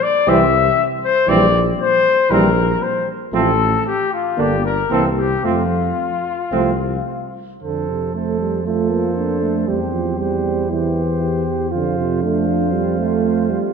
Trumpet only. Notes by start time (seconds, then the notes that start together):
0.03 D5
0.28 E5
1.04 C5
1.29 D5
1.81 C5
2.31 A#4
2.83 C5
3.34 A4
3.87 G4
4.13 F4
4.40 G4
4.65 A#4
4.93 A4
5.19 G4
5.45 F4
7.62 C5
8.14 C5
8.66 C5
9.68 C5
10.20 C5
10.71 C5
11.71 C5
12.22 C5